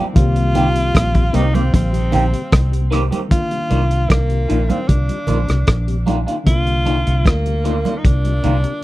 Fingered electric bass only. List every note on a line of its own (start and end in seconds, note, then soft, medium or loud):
0.16 0.92 C2 loud
0.95 1.33 A#1 medium
1.35 1.72 C2 medium
1.74 2.12 A#1 medium
2.14 2.33 A#1 medium
2.53 3.10 C2 loud
3.71 4.09 C2 medium
4.10 4.48 C2 medium
4.51 4.69 A#1 medium
4.89 5.08 C2 medium
5.28 5.48 A#1 medium
5.49 5.67 C2 medium
5.68 6.25 A#1 loud
6.47 7.04 C2 loud
7.07 7.25 C2 medium
7.26 7.83 D2 medium
8.05 8.42 C2 medium
8.45 8.64 C2 medium